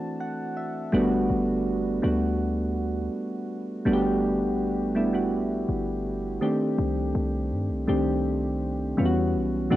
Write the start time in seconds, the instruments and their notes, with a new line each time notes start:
Already playing: synth keys E3 A3 C4 D4 F#4 A5
0.20 synth keys F#5
0.57 synth keys E5
0.92 808-style bass G1, synth keys G3 A3 B3 D4 F#4
1.30 808-style bass G1
2.02 808-style bass D2, synth keys G3 A3 B3 D4 F#4
3.85 808-style bass G1, synth keys G3 A3 B3 D4 F#4
3.93 synth keys G4
4.95 synth keys G3 A3 B3 D4 E4
5.13 synth keys G3 A3 B3 D4 F#4
5.69 808-style bass G1
6.41 synth keys D#3 A3 C4 D4 G4
6.78 808-style bass C2
7.15 808-style bass C2
7.52 808-style bass G2
7.70 808-style bass C2
7.88 808-style bass C2, synth keys D#3 A3 C4 D4 G4
8.97 808-style bass E2, synth keys E3 G3 B3 C#4 F4
9.06 synth keys F#4
9.35 808-style bass B1
9.70 808-style bass D2, synth keys E3 A3 C4 D4 F#4